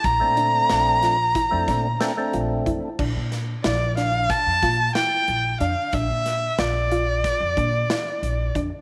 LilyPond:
<<
  \new Staff \with { instrumentName = "Erhu" } { \time 9/8 \key bes \lydian \tempo 4. = 61 bes''2.~ bes''8 r4 | r4 d''8 f''8 a''4 g''4 f''8 | e''4 d''2. r8 | }
  \new Staff \with { instrumentName = "Synth arpeggio sound" } { \time 9/8 \key bes \lydian r8 d'4 f'8 e'8 d'4 f'8 e'8 | d'4 e'8 d'4 f'8 e'4 d'8 | d'4 f'8 f'4 d'8 e'4 d'8 | }
  \new Staff \with { instrumentName = "Tonewheel organ" } { \time 9/8 \key bes \lydian r16 <a c' d'>4. r8 <a c' d'>8 r16 <a c' d'>16 <a c' d'>4 r16 | r1 r8 | r1 r8 | }
  \new Staff \with { instrumentName = "Upright bass" } { \clef bass \time 9/8 \key bes \lydian bes,,16 bes,8. bes,,4~ bes,,16 f,16 bes,8 r8 bes,,8 f,16 r16 | bes,,16 bes,8. bes,,4~ bes,,16 f,16 bes,8 r8 bes,,8 f,16 r16 | bes,,16 bes,8. bes,,4~ bes,,16 f,16 bes,8 r8 bes,,8 f,16 r16 | }
  \new DrumStaff \with { instrumentName = "Drums" } \drummode { \time 9/8 <hh bd>8 hh8 <hh sn>8 <hh sn>8 <hh bd>8 <hh bd sn>8 <hh sn>8 hh8 <hh bd>8 | <cymc bd>8 <hh sn>8 <hh sn>8 <hh sn>8 <hh bd sn>8 <hh bd sn>8 <hh sn>8 hh8 hh8 | <hh bd>8 <hh sn>8 <hh sn>8 hh8 <hh bd sn>8 <hh bd>8 <hh sn>8 hh8 <hh bd>8 | }
>>